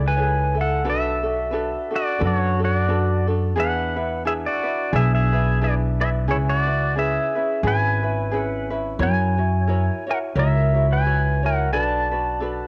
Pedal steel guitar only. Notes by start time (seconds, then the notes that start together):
0.08 B4 G#5
0.61 A4 F#5
0.90 A4 E5
1.96 F#4 D5
2.26 F#4 C#5
2.64 F#4 D5
3.60 B4 F#5
4.27 G#4 E5
4.46 F#4 D5
4.96 G#4 E5
5.15 G#4 E5
5.64 G#4 D5
6.01 G#4 E5
6.31 E4 C#5
6.49 F#4 D5
6.99 G#4 E5
7.67 B4 G#5
8.39 F#5
9.02 C#5 G#5
10.11 A#4 F#5
10.39 A#4 E5
10.92 B4 G#5
11.46 A#4 F#5
11.73 D5 A5